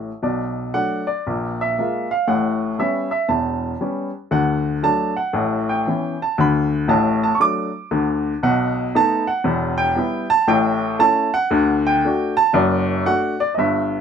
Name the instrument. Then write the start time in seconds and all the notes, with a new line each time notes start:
upright piano
0.22 B1 B2 D5
0.74 F#3 A3 D4 F#5
1.07 D5
1.27 A#1 A#2
1.61 E5
1.79 G#3 A#3 F4
2.11 F5
2.28 A1 A2 F#5
2.79 G3 B3 C#4 E5
3.11 E5
3.28 E1 E2 A5
3.81 G3 B3 C#4
4.31 D2 D3 F#5
4.83 F#3 A3 D4 A5
5.17 F#5
5.33 A1 A2
5.69 G5
5.87 E3 B3 C#4
6.22 A5
6.38 D2 D3 B5
6.88 A1 A2 A5
7.23 A5
7.35 C#6
7.40 F#3 A3 D4 D6
7.91 D2 D3
8.43 B1 B2 F#5
8.95 A3 B3 D#4 A5
9.27 F#5
9.44 E1 E2
9.78 G5
9.96 G3 B3 E4
10.30 A5
10.48 A1 A2 G5
10.99 A3 C#4 E4 A5
11.34 F#5
11.51 D2 D3
11.87 G5
12.05 A3 D4 F#4
12.37 A5
12.53 F#1 F#2 D5
13.06 A3 D4 F#4 F#5
13.40 D5
13.55 G1 G2 D#5
13.59 E5